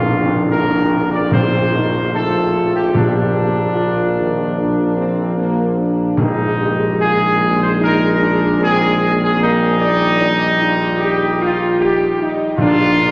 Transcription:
0.00 6.15 A#1 medium
0.00 0.86 A#2 medium
0.00 1.28 D3 medium
0.00 2.10 A#3 medium
0.00 0.45 F4 loud
0.07 1.27 D4 medium
0.51 1.08 A#4 loud
1.12 1.32 D5 medium
1.30 2.50 A#2 loud
1.30 6.18 F3 medium
1.30 1.71 C4 medium
1.30 2.11 C5 loud
1.74 2.12 D#4 medium
2.14 2.96 A3 medium
2.14 2.96 F4 medium
2.14 2.71 A4 loud
2.76 2.94 G4 medium
2.94 4.12 A#2 loud
2.94 6.15 A#3 medium
2.94 5.74 D4 medium
2.94 3.76 G4 loud
3.75 4.13 F4 medium
4.17 4.55 D#3 medium
4.57 4.97 D4 loud
4.96 5.34 C4 medium
5.38 5.75 A#3 medium
5.78 6.19 D4 medium
6.17 12.28 A#1 medium
6.17 7.38 A#2 loud
6.17 13.11 D#3 medium
6.17 9.26 G#3 medium
6.17 6.98 D#4 loud
6.17 6.48 D#4 medium
6.61 6.99 G4 medium
7.01 7.82 F4 medium
7.01 7.58 G#4 loud
7.63 7.72 C5 medium
7.81 8.19 D#4 loud
7.81 8.59 A#4 loud
8.21 8.59 D4 medium
8.61 9.38 C4 medium
8.61 9.18 G#4 loud
9.23 9.41 G#4 loud
9.40 12.56 G3 medium
9.40 9.78 A#3 medium
9.40 12.16 D#4 loud
9.79 10.18 D5 medium
10.21 10.62 D#4 medium
10.63 11.02 F4 loud
11.00 11.37 G4 loud
11.40 11.77 F4 loud
11.81 12.17 G4 loud
12.22 12.58 D#4 loud
12.58 13.11 A#1 medium
12.58 13.11 A#2 loud
12.58 13.11 A#3 loud
12.58 12.99 D4 loud
12.58 13.11 F4 loud
13.02 13.11 D4 loud

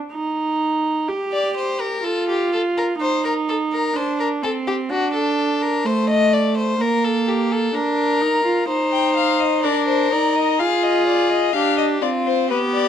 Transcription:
0.13 1.10 D#4 medium
1.08 2.03 G4 medium
1.32 1.55 D5 medium
1.57 1.82 C5 medium
1.80 2.06 A#4 medium
2.04 2.98 F4 medium
2.04 2.29 A4 medium
2.29 2.53 G4 medium
2.53 2.61 A4 medium
2.78 2.86 A#4 medium
2.99 3.93 D#4 medium
2.99 3.24 C5 medium
3.25 3.33 A#4 medium
3.49 3.57 A4 medium
3.73 3.98 A#4 medium
3.95 4.44 D4 medium
3.95 4.20 C5 medium
4.20 4.28 A#4 medium
4.42 4.91 C4 medium
4.42 4.52 A4 medium
4.67 4.75 G4 medium
4.90 5.86 D4 medium
4.90 5.14 F#4 medium
5.14 5.64 A4 medium
5.62 5.88 A#4 medium
5.85 6.79 A3 medium
5.85 6.09 C5 medium
6.10 6.35 D#5 medium
6.34 6.57 D5 medium
6.58 6.83 C5 medium
6.80 7.73 A#3 medium
6.80 7.06 A#4 medium
7.05 7.30 A4 medium
7.28 7.53 G4 medium
7.52 7.77 A4 medium
7.74 8.23 D4 medium
7.74 8.68 A#4 medium
8.21 8.44 D#4 medium
8.45 8.68 F4 medium
8.68 9.66 D#4 medium
8.68 9.65 C5 medium
8.93 9.15 G5 medium
9.16 9.41 F5 medium
9.40 9.62 D#5 medium
9.63 10.12 D4 medium
9.63 10.60 A#4 medium
9.63 9.87 D5 medium
9.88 10.14 C5 medium
10.12 10.62 D#4 medium
10.12 10.37 D5 medium
10.36 10.61 D#5 medium
10.59 11.54 F4 medium
10.59 11.54 G#4 medium
10.59 10.85 F5 medium
10.83 11.06 D#5 medium
11.07 11.31 D5 medium
11.30 11.55 D#5 medium
11.53 12.02 D4 medium
11.53 12.04 G4 medium
11.53 11.77 F5 medium
11.78 11.86 D#5 medium
12.02 12.52 C4 medium
12.02 12.50 F4 medium
12.02 12.10 D5 medium
12.26 12.50 C5 medium
12.50 12.88 B3 medium
12.50 12.88 G4 medium
12.50 12.58 B4 medium
12.74 12.88 D5 medium

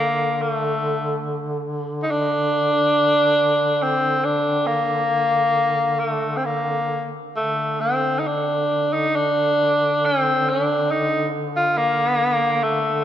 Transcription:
0.00 7.19 D3 soft
0.00 0.43 A#3 medium
0.42 1.27 A3 medium
2.03 2.12 D#4 medium
2.11 3.84 D4 loud
3.82 4.26 C4 medium
4.25 4.68 D4 medium
4.67 6.01 A#3 medium
5.99 6.38 A3 medium
6.36 6.47 C4 medium
6.45 7.08 A#3 medium
7.36 13.04 D3 soft
7.36 7.82 A3 medium
7.80 8.21 C4 medium
8.19 8.29 D#4 medium
8.27 8.95 D4 medium
8.93 9.17 D#4 medium
9.16 10.07 D4 medium
10.05 10.51 C4 medium
10.49 10.93 D4 medium
10.91 11.30 D#4 medium
11.56 11.79 F4 medium
11.78 12.65 A#3 medium
12.63 13.04 A3 medium

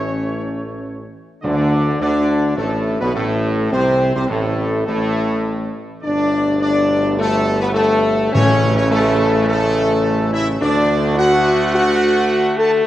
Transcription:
0.00 1.10 A1 medium
0.00 1.10 E3 medium
0.00 1.14 A3 medium
0.00 1.10 C#4 loud
0.00 1.08 C#5 loud
1.42 1.97 D2 loud
1.42 1.97 D3 loud
1.42 2.26 D3 loud
1.42 1.97 D4 loud
1.42 1.97 D5 loud
2.00 2.54 D2 loud
2.00 2.54 D3 loud
2.00 2.54 D4 loud
2.00 2.54 D5 loud
2.56 2.98 A1 loud
2.56 3.01 A2 loud
2.56 2.97 A3 loud
2.56 2.99 A4 loud
3.00 3.16 B1 loud
3.00 3.15 B2 medium
3.00 3.15 B3 loud
3.00 3.14 B4 loud
3.14 3.72 A1 loud
3.14 3.69 A2 loud
3.14 3.69 A3 loud
3.14 3.69 A4 loud
3.72 4.13 C2 loud
3.72 4.14 C3 loud
3.72 4.13 C4 loud
3.72 4.13 C5 loud
4.14 4.30 C2 loud
4.14 4.22 C3 loud
4.14 4.30 C4 loud
4.14 4.29 C5 loud
4.28 4.84 A1 loud
4.28 4.84 A2 loud
4.28 4.87 A3 loud
4.28 4.85 A4 loud
4.86 5.71 A1 loud
4.86 5.70 A2 loud
4.86 5.71 A3 loud
4.86 5.70 A4 loud
6.02 8.30 G1 loud
6.02 8.29 B2 loud
6.02 10.57 A3 loud
6.02 6.57 D4 loud
6.02 6.56 D5 loud
6.61 7.15 D4 loud
6.61 7.15 D5 loud
7.19 7.59 A3 loud
7.19 7.59 A4 loud
7.60 7.75 B3 loud
7.60 7.67 B4 loud
7.74 8.29 A3 loud
7.74 8.29 A4 loud
8.32 10.58 A1 loud
8.32 9.17 A2 loud
8.32 10.57 C#3 loud
8.32 8.74 C#4 loud
8.32 8.75 C#5 loud
8.77 8.84 C#4 loud
8.77 8.91 C#5 loud
8.90 9.44 A3 loud
8.90 9.44 A4 loud
9.48 10.30 A3 loud
9.48 10.30 A4 loud
10.33 10.46 E4 loud
10.33 10.47 E5 loud
10.61 12.56 D2 loud
10.61 12.83 D3 loud
10.61 12.87 A3 loud
10.61 11.14 D4 loud
10.61 11.14 D5 loud
11.17 11.73 F#4 loud
11.17 11.71 F#5 loud
11.74 12.55 F#4 loud
11.74 12.55 F#5 loud
12.58 12.86 A4 loud
12.58 12.71 A5 loud

